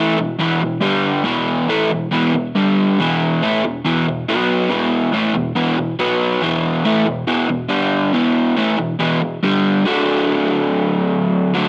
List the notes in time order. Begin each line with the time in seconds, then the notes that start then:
Already playing: A2 E3
0.00 A3
0.19 E2 B2
0.39 E2 B2 E3
0.61 E2 B2
0.81 G2 D3 G3
1.25 E2 B2 E3
1.68 A2 E3 A3
1.90 E2 B2
2.11 E2 B2 E3
2.34 E2 B2
2.55 G2 D3 G3
2.99 E2 B2 E3
3.42 A2 E3 A3
3.64 E2 B2
3.85 E2 B2 E3
4.08 E2 B2
4.29 B2 F#3 B3
4.70 E2 B2 E3
5.13 A2 E3 A3
5.34 E2 B2
5.56 E2 B2 E3
5.78 E2 B2
5.99 B2 F#3 B3
6.42 E2 B2 E3
6.85 A2 E3 A3
7.06 E2 B2
7.27 E2 B2 E3
7.48 E2 B2
7.69 G2 D3 G3
8.13 E2 B2 E3
8.57 A2 E3 A3
8.78 E2 B2
9.00 E2 B2 E3
9.22 E2 B2
9.43 G2 D3 G3
9.85 D3 F#3 A3 D4
11.54 D3 F#3 A3 D4